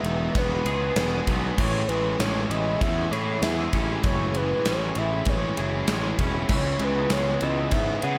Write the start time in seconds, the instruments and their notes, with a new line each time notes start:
Already playing: overdriven electric guitar E2 E3 G#3 B3 G#4, clean electric guitar E3 B3 G#4, string machine B4 G#5 D#6, soft synth lead E5
0.04 picked electric bass E1, overdriven electric guitar D#3 D#4, ride
0.35 picked electric bass E1, overdriven electric guitar G#3 B3, clean electric guitar B3, soft synth lead B4, kick, ride
0.65 picked electric bass C#2, clean electric guitar G#4, overdriven electric guitar G#4, snare, ride
0.96 picked electric bass E1, overdriven electric guitar G#3 B3, clean electric guitar B3, snare, ride
1.27 picked electric bass B1, overdriven electric guitar B3 G#4, clean electric guitar D#4, kick, ride
1.58 picked electric bass A1, overdriven electric guitar A2, clean electric guitar E3, string machine G#4 C#6, soft synth lead C#5, kick, crash
1.88 picked electric bass A1, overdriven electric guitar E3 G#3, soft synth lead B4, ride
2.19 picked electric bass A1, overdriven electric guitar G#3 C#4, clean electric guitar C#4, soft synth lead C#5, snare, ride
2.50 picked electric bass A1, clean electric guitar E3, overdriven electric guitar E3 E4, soft synth lead D#5, ride
2.81 picked electric bass E2, overdriven electric guitar G#3 C#4, soft synth lead E5, kick, ride
3.11 picked electric bass A2, overdriven electric guitar E3 E4, clean electric guitar G#4, soft synth lead C#5, snare, ride
3.42 picked electric bass E2, overdriven electric guitar G#3 C#4, soft synth lead E5, snare, ride
3.73 picked electric bass A1, overdriven electric guitar C#4 E4, clean electric guitar C#4, kick, ride
4.03 picked electric bass F#1, overdriven electric guitar A2, clean electric guitar E3, soft synth lead C#5, kick, ride
4.34 overdriven electric guitar E3 G#3, soft synth lead B4, ride
4.65 picked electric bass A1, overdriven electric guitar G#3 C#4, clean electric guitar C#4, soft synth lead C#5, snare, ride
4.95 picked electric bass A1, clean electric guitar E3, overdriven electric guitar E3 E4, soft synth lead E5, ride
5.25 picked electric bass A1, overdriven electric guitar G#3 C#4, soft synth lead C#5, kick, ride
5.57 picked electric bass F#1, overdriven electric guitar E3 E4, clean electric guitar G#4, ride
5.87 picked electric bass A1, overdriven electric guitar G#3 C#4, snare, ride
6.18 picked electric bass E1, clean electric guitar C#4, overdriven electric guitar C#4 E4, kick, ride
6.49 picked electric bass C#2, overdriven electric guitar C#3, clean electric guitar E3, string machine B4, soft synth lead C#5, kick, crash
6.79 picked electric bass C#2, overdriven electric guitar C#3 G#3, clean electric guitar B3, ride
6.84 soft synth lead B4
7.10 picked electric bass C#2, overdriven electric guitar G#3 B3, clean electric guitar C#4, soft synth lead C#5, snare, ride
7.41 picked electric bass C#2, clean electric guitar E3, overdriven electric guitar E3 E4, soft synth lead D#5, ride
7.71 picked electric bass G#2, overdriven electric guitar G#3 B3, clean electric guitar B3, soft synth lead E5, kick, ride
8.02 picked electric bass C#3, overdriven electric guitar C#3 E4, clean electric guitar G#4, soft synth lead F#5, ride